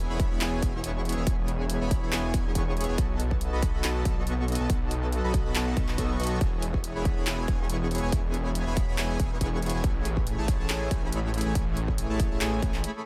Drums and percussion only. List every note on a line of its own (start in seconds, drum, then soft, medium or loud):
0.20 kick loud
0.20 closed hi-hat medium
0.41 clap loud
0.41 closed hi-hat medium
0.62 kick loud
0.62 closed hi-hat medium
0.84 closed hi-hat medium
1.05 closed hi-hat medium
1.09 closed hi-hat medium
1.12 closed hi-hat medium
1.27 kick loud
1.27 closed hi-hat medium
1.48 closed hi-hat medium
1.70 closed hi-hat medium
1.91 kick loud
1.91 closed hi-hat medium
2.12 clap loud
2.12 closed hi-hat medium
2.34 kick loud
2.34 closed hi-hat medium
2.55 kick medium
2.55 closed hi-hat medium
2.77 closed hi-hat medium
2.81 closed hi-hat medium
2.84 closed hi-hat medium
2.98 kick loud
2.98 closed hi-hat medium
3.20 closed hi-hat medium
3.31 kick medium
3.41 closed hi-hat medium
3.62 kick loud
3.62 closed hi-hat medium
3.84 clap loud
3.84 closed hi-hat medium
4.05 kick loud
4.05 closed hi-hat medium
4.27 closed hi-hat medium
4.48 closed hi-hat soft
4.52 closed hi-hat medium
4.55 closed hi-hat medium
4.70 kick loud
4.70 closed hi-hat medium
4.91 closed hi-hat medium
5.12 closed hi-hat medium
5.34 kick loud
5.34 closed hi-hat medium
5.55 clap loud
5.55 closed hi-hat medium
5.77 kick loud
5.77 closed hi-hat medium
5.88 clap soft
5.98 kick medium
5.98 closed hi-hat medium
6.20 closed hi-hat soft
6.23 closed hi-hat medium
6.27 closed hi-hat medium
6.41 kick loud
6.41 closed hi-hat medium
6.62 closed hi-hat medium
6.74 kick medium
6.84 closed hi-hat medium
7.05 kick loud
7.05 closed hi-hat medium
7.27 clap loud
7.27 closed hi-hat medium
7.48 kick loud
7.48 closed hi-hat medium
7.70 closed hi-hat medium
7.91 closed hi-hat soft
7.95 closed hi-hat medium
7.98 closed hi-hat medium
8.12 kick loud
8.12 closed hi-hat medium
8.34 closed hi-hat medium
8.55 closed hi-hat medium
8.77 kick loud
8.77 closed hi-hat medium
8.98 clap loud
8.98 closed hi-hat medium
9.20 kick loud
9.20 closed hi-hat medium
9.41 kick medium
9.41 closed hi-hat medium
9.62 closed hi-hat soft
9.66 closed hi-hat medium
9.70 closed hi-hat medium
9.84 kick loud
9.84 closed hi-hat medium
10.05 closed hi-hat medium
10.17 kick medium
10.27 closed hi-hat medium
10.48 kick loud
10.48 closed hi-hat medium
10.70 clap loud
10.70 closed hi-hat medium
10.91 kick loud
10.91 closed hi-hat medium
11.12 closed hi-hat medium
11.34 closed hi-hat soft
11.38 closed hi-hat medium
11.41 closed hi-hat medium
11.55 kick loud
11.55 closed hi-hat medium
11.77 closed hi-hat medium
11.88 kick medium
11.98 closed hi-hat medium
12.20 kick loud
12.20 closed hi-hat medium
12.41 clap loud
12.41 closed hi-hat medium
12.62 kick loud
12.62 closed hi-hat medium
12.74 clap soft
12.84 closed hi-hat medium